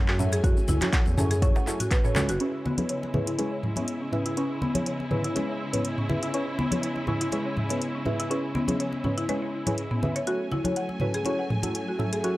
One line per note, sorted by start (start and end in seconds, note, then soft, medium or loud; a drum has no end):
0.00 0.40 F#2 loud
0.00 2.36 F#3 medium
0.00 2.36 A3 medium
0.00 2.36 C#4 medium
0.00 2.36 G#5 medium
0.08 0.18 F#4 medium
0.08 clap medium
0.19 0.41 C#4 medium
0.19 0.41 E4 medium
0.19 0.41 F#4 medium
0.19 0.41 A4 medium
0.19 0.41 E5 loud
0.19 mid tom medium
0.19 muted conga soft
0.19 maracas medium
0.32 0.39 G#4 loud
0.32 closed hi-hat medium
0.32 maracas soft
0.44 0.54 F#2 loud
0.44 0.56 C#4 medium
0.44 0.56 E4 medium
0.44 0.56 F#4 medium
0.44 0.56 F#4 loud
0.44 0.56 A4 medium
0.44 0.56 C#5 loud
0.44 kick loud
0.44 closed hi-hat soft
0.44 djembe tone medium
0.44 maracas soft
0.57 djembe tone medium
0.57 maracas soft
0.68 0.79 C#2 medium
0.68 0.81 E4 loud
0.68 muted conga medium
0.68 low conga medium
0.68 djembe bass loud
0.68 maracas loud
0.81 1.15 C#4 medium
0.81 1.15 E4 medium
0.81 1.15 F#4 medium
0.81 1.15 A4 medium
0.81 1.15 C#5 medium
0.81 clap medium
0.81 closed hi-hat medium
0.81 djembe tone loud
0.81 high conga medium
0.81 maracas soft
0.93 1.05 F#5 medium
0.93 kick loud
0.93 clap loud
0.93 closed hi-hat soft
0.93 maracas medium
1.06 1.15 E2 medium
1.06 muted conga soft
1.06 maracas soft
1.17 1.51 F#2 loud
1.17 1.30 C#4 medium
1.17 1.29 E4 medium
1.17 1.29 F#4 medium
1.17 1.25 G#4 medium
1.17 1.30 A4 medium
1.17 1.30 C#5 loud
1.17 mid tom medium
1.17 djembe slap medium
1.17 djembe tone medium
1.17 high conga medium
1.17 low conga medium
1.17 maracas medium
1.31 1.37 G#4 loud
1.31 closed hi-hat medium
1.31 maracas soft
1.42 1.61 C#4 loud
1.42 1.49 C#4 loud
1.42 1.61 E4 medium
1.42 1.61 F#4 medium
1.42 1.61 A4 medium
1.42 1.61 C#5 loud
1.42 kick loud
1.42 closed hi-hat soft
1.42 muted conga medium
1.42 maracas soft
1.56 1.62 F#5 medium
1.56 djembe slap loud
1.56 maracas soft
1.67 1.79 C#4 medium
1.67 1.79 E4 medium
1.67 1.79 F#4 medium
1.67 1.79 A4 medium
1.67 1.79 C#5 loud
1.67 clap soft
1.67 djembe slap medium
1.67 maracas medium
1.80 1.86 F#4 medium
1.80 closed hi-hat medium
1.80 mid tom medium
1.80 muted conga soft
1.80 maracas soft
1.91 2.04 B4 loud
1.91 kick loud
1.91 clap loud
1.91 closed hi-hat soft
1.91 maracas soft
2.04 2.14 C#4 medium
2.04 2.14 E4 medium
2.04 2.14 F#4 medium
2.04 2.14 A4 medium
2.04 2.14 C#5 loud
2.04 2.11 C#5 loud
2.04 mid tom medium
2.04 maracas soft
2.15 2.31 C#2 medium
2.15 2.28 C#4 medium
2.15 2.28 E4 medium
2.15 2.28 F#4 medium
2.15 2.28 A4 medium
2.15 2.28 C#5 loud
2.15 clap medium
2.15 djembe slap medium
2.15 muted conga medium
2.15 high conga medium
2.15 low conga loud
2.15 maracas medium
2.29 2.38 F#1 loud
2.29 2.40 F#4 loud
2.29 closed hi-hat medium
2.29 maracas soft
2.40 10.24 C#3 medium
2.40 10.23 G#3 medium
2.40 2.52 C#4 medium
2.40 2.53 C#4 medium
2.40 12.37 C#4 medium
2.40 2.52 E4 medium
2.40 10.24 E4 medium
2.40 2.52 G#4 medium
2.40 2.53 B4 medium
2.40 2.52 C#5 medium
2.40 closed hi-hat soft
2.65 2.78 B3 medium
2.65 muted conga soft
2.65 low conga medium
2.78 3.11 C#4 medium
2.78 3.11 E4 medium
2.78 3.11 G#4 medium
2.78 3.11 B4 medium
2.78 3.11 C#5 medium
2.78 closed hi-hat medium
2.78 high conga loud
2.89 3.02 C#5 medium
2.89 closed hi-hat soft
3.03 muted conga soft
3.14 3.26 C#4 medium
3.14 3.26 E4 medium
3.14 3.21 E4 medium
3.14 3.26 G#4 medium
3.14 3.26 B4 medium
3.14 3.26 C#5 loud
3.14 mid tom medium
3.14 high conga medium
3.14 low conga medium
3.27 3.34 E4 medium
3.27 closed hi-hat medium
3.38 3.46 G#3 medium
3.38 3.57 C#4 loud
3.38 3.57 E4 medium
3.38 3.57 G#4 medium
3.38 3.57 B4 medium
3.38 3.57 C#5 loud
3.38 closed hi-hat soft
3.38 muted conga soft
3.52 3.58 C#5 medium
3.63 mid tom medium
3.63 high conga medium
3.76 3.83 B3 medium
3.76 3.87 C#4 medium
3.76 3.87 E4 medium
3.76 3.87 G#4 medium
3.76 3.87 B4 medium
3.76 3.87 C#5 medium
3.76 closed hi-hat medium
3.76 muted conga soft
3.76 high conga medium
3.88 closed hi-hat soft
4.01 4.12 C#4 medium
4.12 4.34 C#4 medium
4.12 4.34 E4 medium
4.12 4.34 G#4 medium
4.12 4.34 B4 medium
4.12 4.34 E5 loud
4.12 mid tom medium
4.12 muted conga soft
4.26 4.32 E4 medium
4.26 closed hi-hat medium
4.37 4.49 C#4 medium
4.37 4.49 C#4 loud
4.37 4.49 E4 medium
4.37 4.49 G#4 medium
4.37 4.49 B4 medium
4.37 4.49 C#5 medium
4.37 closed hi-hat soft
4.62 4.75 B3 medium
4.62 muted conga soft
4.62 low conga medium
4.75 5.08 C#4 medium
4.75 5.08 E4 medium
4.75 5.08 G#4 medium
4.75 5.08 B4 medium
4.75 5.08 C#5 medium
4.75 closed hi-hat medium
4.75 high conga loud
4.86 4.99 C#5 medium
4.86 closed hi-hat soft
5.00 muted conga soft
5.11 5.23 C#4 medium
5.11 5.23 E4 medium
5.11 5.18 E4 medium
5.11 5.23 G#4 medium
5.11 5.23 B4 medium
5.11 5.23 C#5 loud
5.11 mid tom medium
5.11 high conga medium
5.11 low conga medium
5.24 5.31 E4 medium
5.24 closed hi-hat medium
5.35 5.43 G#3 medium
5.35 5.54 C#4 medium
5.35 5.54 E4 medium
5.35 5.54 G#4 medium
5.35 5.54 B4 medium
5.35 5.54 C#5 loud
5.35 closed hi-hat soft
5.35 muted conga soft
5.49 5.55 C#5 medium
5.73 5.80 B3 medium
5.73 5.84 C#4 medium
5.73 5.84 E4 medium
5.73 5.84 G#4 medium
5.73 5.84 B4 medium
5.73 5.84 C#5 medium
5.73 closed hi-hat medium
5.73 mid tom medium
5.73 muted conga soft
5.73 high conga medium
5.85 closed hi-hat soft
5.98 6.08 C#4 medium
5.98 mid tom medium
6.09 6.31 C#4 medium
6.09 6.31 E4 medium
6.09 6.31 G#4 medium
6.09 6.31 B4 medium
6.09 6.31 E5 medium
6.09 muted conga soft
6.09 low conga medium
6.23 6.29 E4 medium
6.23 closed hi-hat soft
6.34 6.46 C#4 medium
6.34 6.46 C#4 loud
6.34 6.46 E4 medium
6.34 6.46 G#4 medium
6.34 6.46 B4 medium
6.34 6.46 C#5 medium
6.34 closed hi-hat soft
6.59 6.71 B3 medium
6.59 muted conga soft
6.59 low conga medium
6.72 7.05 C#4 medium
6.72 7.05 E4 medium
6.72 7.05 G#4 medium
6.72 7.05 B4 medium
6.72 7.05 C#5 medium
6.72 closed hi-hat medium
6.72 high conga loud
6.83 6.95 C#5 medium
6.83 closed hi-hat soft
6.96 muted conga soft
7.07 7.20 C#4 medium
7.07 7.20 E4 medium
7.07 7.15 E4 medium
7.07 7.20 G#4 medium
7.07 7.20 B4 medium
7.07 7.20 C#5 loud
7.07 mid tom medium
7.07 high conga medium
7.07 low conga medium
7.21 7.27 E4 loud
7.21 closed hi-hat soft
7.32 7.40 G#3 medium
7.32 7.51 C#4 loud
7.32 7.51 E4 medium
7.32 7.51 G#4 medium
7.32 7.51 B4 medium
7.32 7.51 C#5 loud
7.32 closed hi-hat soft
7.32 muted conga soft
7.46 7.52 C#5 medium
7.57 mid tom medium
7.57 high conga medium
7.69 7.76 B3 medium
7.69 7.80 C#4 medium
7.69 7.81 E4 medium
7.69 7.81 G#4 medium
7.69 7.81 B4 medium
7.69 7.81 C#5 medium
7.69 closed hi-hat medium
7.69 muted conga soft
7.82 closed hi-hat soft
7.95 8.05 C#4 medium
8.05 8.28 C#4 medium
8.05 8.28 E4 medium
8.05 8.28 G#4 medium
8.05 8.28 B4 medium
8.05 8.28 E5 loud
8.05 mid tom medium
8.05 muted conga soft
8.05 high conga medium
8.20 8.26 E4 loud
8.20 closed hi-hat soft
8.30 8.43 C#4 medium
8.30 8.43 C#4 loud
8.30 8.43 E4 medium
8.30 8.43 G#4 medium
8.30 8.43 B4 medium
8.30 8.43 C#5 loud
8.30 closed hi-hat soft
8.55 8.68 B3 medium
8.55 muted conga soft
8.55 low conga medium
8.68 9.02 C#4 medium
8.68 9.02 E4 medium
8.68 9.02 G#4 medium
8.68 9.01 B4 medium
8.68 9.02 C#5 medium
8.68 closed hi-hat soft
8.68 high conga loud
8.80 8.92 C#5 medium
8.80 closed hi-hat soft
8.92 muted conga soft
9.04 9.16 C#4 medium
9.04 9.16 E4 medium
9.04 9.12 E4 medium
9.04 9.16 G#4 medium
9.04 9.16 B4 medium
9.04 9.16 C#5 loud
9.04 mid tom medium
9.04 high conga medium
9.04 low conga medium
9.18 9.24 E4 medium
9.18 closed hi-hat soft
9.29 9.36 G#3 medium
9.29 9.47 C#4 medium
9.29 9.48 E4 medium
9.29 9.47 G#4 medium
9.29 9.47 B4 medium
9.29 9.47 C#5 loud
9.29 closed hi-hat soft
9.29 muted conga soft
9.42 9.48 C#5 medium
9.67 9.77 C#4 medium
9.67 9.77 E4 medium
9.67 9.73 G#4 medium
9.67 9.77 G#4 medium
9.67 9.77 B4 medium
9.67 9.77 C#5 medium
9.67 closed hi-hat medium
9.67 mid tom medium
9.67 muted conga soft
9.67 high conga medium
9.78 closed hi-hat soft
9.91 9.97 B3 medium
9.91 mid tom medium
10.03 10.25 C#4 medium
10.03 10.25 E4 medium
10.03 10.25 G#4 medium
10.03 10.25 B4 medium
10.03 10.25 E5 loud
10.03 muted conga soft
10.03 low conga loud
10.16 10.26 C#5 medium
10.16 closed hi-hat soft
10.27 12.37 F#3 medium
10.27 12.37 A3 medium
10.27 10.39 C#4 medium
10.27 10.39 E4 medium
10.27 10.39 F#4 medium
10.27 10.39 F#4 loud
10.27 10.39 A4 medium
10.27 10.39 C#5 medium
10.27 12.37 G#5 medium
10.27 closed hi-hat soft
10.52 10.65 E4 loud
10.52 muted conga soft
10.52 low conga medium
10.65 10.98 C#4 medium
10.65 10.98 E4 medium
10.65 10.98 F#4 medium
10.65 10.98 A4 medium
10.65 10.98 C#5 medium
10.65 closed hi-hat soft
10.65 high conga loud
10.76 10.89 F#5 medium
10.76 closed hi-hat soft
10.89 muted conga soft
11.00 11.13 C#4 medium
11.00 11.13 E4 medium
11.00 11.13 F#4 medium
11.00 11.13 A4 medium
11.00 11.08 B4 medium
11.00 11.13 C#5 loud
11.00 mid tom medium
11.00 high conga medium
11.00 low conga medium
11.14 11.21 G#4 loud
11.14 closed hi-hat soft
11.25 11.44 C#4 loud
11.25 11.33 C#4 medium
11.25 11.44 E4 medium
11.25 11.44 F#4 medium
11.25 11.44 A4 medium
11.25 11.44 C#5 loud
11.25 closed hi-hat soft
11.25 muted conga soft
11.39 11.45 F#5 medium
11.50 mid tom medium
11.50 high conga medium
11.63 11.74 C#4 medium
11.63 11.74 E4 medium
11.63 11.70 E4 medium
11.63 11.74 F#4 medium
11.63 11.74 A4 medium
11.63 11.74 C#5 medium
11.63 closed hi-hat medium
11.63 muted conga soft
11.63 high conga medium
11.75 closed hi-hat soft
11.88 11.99 F#4 medium
11.99 12.21 C#4 medium
11.99 12.21 E4 medium
11.99 12.21 F#4 medium
11.99 12.21 A4 medium
11.99 12.21 E5 loud
11.99 mid tom medium
11.99 muted conga soft
12.13 12.19 G#4 medium
12.13 closed hi-hat soft
12.23 12.36 C#4 medium
12.23 12.36 E4 medium
12.23 12.36 F#4 medium
12.23 12.36 A4 medium
12.23 12.36 C#5 medium
12.23 closed hi-hat soft